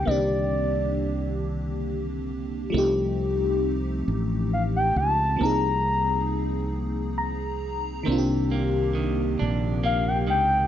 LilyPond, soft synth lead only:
\new Staff \with { instrumentName = "Soft synth lead" } { \time 6/8 \key c \minor \tempo 4. = 45 d''4. r4. | r2 f''16 g''16 a''8 | bes''4. r4. | r2 f''16 g''16 g''8 | }